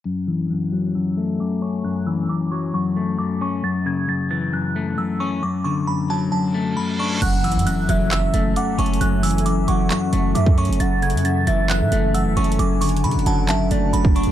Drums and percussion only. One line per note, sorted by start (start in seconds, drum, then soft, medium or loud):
7.22 closed hi-hat medium
7.22 crash loud
7.44 closed hi-hat soft
7.52 closed hi-hat medium
7.59 closed hi-hat medium
7.67 closed hi-hat medium
7.89 closed hi-hat medium
8.11 clap loud
8.11 closed hi-hat medium
8.34 closed hi-hat medium
8.56 closed hi-hat medium
8.79 closed hi-hat soft
8.86 closed hi-hat medium
8.93 closed hi-hat medium
9.01 closed hi-hat medium
9.23 closed hi-hat soft
9.23 open hi-hat medium
9.31 closed hi-hat medium
9.38 closed hi-hat medium
9.46 closed hi-hat medium
9.68 closed hi-hat medium
9.90 clap loud
9.90 closed hi-hat medium
10.13 closed hi-hat medium
10.35 closed hi-hat medium
10.46 kick loud
10.58 closed hi-hat soft
10.65 closed hi-hat medium
10.73 closed hi-hat medium
10.80 closed hi-hat medium
11.02 closed hi-hat soft
11.10 closed hi-hat medium
11.17 closed hi-hat medium
11.25 closed hi-hat medium
11.47 closed hi-hat medium
11.70 clap loud
11.70 closed hi-hat medium
11.92 closed hi-hat medium
12.15 closed hi-hat medium
12.37 closed hi-hat soft
12.44 closed hi-hat medium
12.52 closed hi-hat medium
12.59 closed hi-hat medium
12.82 closed hi-hat medium
12.82 open hi-hat medium
12.89 closed hi-hat medium
12.97 closed hi-hat medium
13.04 closed hi-hat medium
13.11 closed hi-hat medium
13.19 closed hi-hat soft
13.26 closed hi-hat medium
13.48 clap loud
13.48 closed hi-hat medium
13.71 closed hi-hat medium
13.94 closed hi-hat medium
14.05 kick loud
14.16 closed hi-hat medium
14.23 closed hi-hat medium